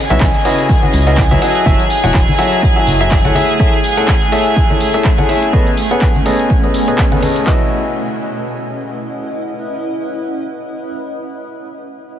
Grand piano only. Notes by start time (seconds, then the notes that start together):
0.10 C#3 E4 F#4 B4 C#5 E5
0.45 C#3 E4 F#4 B4 C#5 D#5
0.83 C#3 E4 F#4 B4 C#5 D#5
1.07 C#3 E4 F#4 B4 C#5 D#5
1.31 F#3 E4 F#4 B4 C#5 E5
1.42 F#3 E4 F#4 A4 C#5 D#5
1.66 F#3 E4 F#4 A4 C#5 E5
2.04 F#3 E4 F#4 A4 C#5 F#5
2.38 F#3 E4 F#4 A4 C#5 E5
2.76 F#3 E4 F#4 A4 C#5 E5
3.01 F#3 E4 F#4 A4 C#5 E5
3.25 A3 E4 F#4 A4 C#5 F#5
3.35 A3 E4 G#4 A4 C#5 E5
3.60 A3 E4 G#4 A4 C#5 E5
3.97 A3 E4 G#4 A4 C#5 F#5
4.32 A3 E4 G#4 A4 C#5 E5
4.70 A3 E4 G#4 A4 C#5 E5
4.94 A3 E4 G#4 A4 C#5 E5
5.18 A3 E4 G#4 A4 C#5 F#5
5.29 E4 G#4 A4 C#5 E5
5.53 B3 G#4 A4 B4 C#5 D#5
5.91 B3 G#4 A4 B4 C#5 F#5
6.26 B3 G#4 A4 B4 C#5 D#5
6.63 B3 G#4 A4 B4 C#5 D#5
6.88 B3 G#4 A4 B4 C#5 D#5
7.12 B3 G#4 A4 B4 C#5 F#5
7.23 C#4 G#4 A4 B4 C#5 D#5
7.47 E4 F#4 B4 C#5 D#5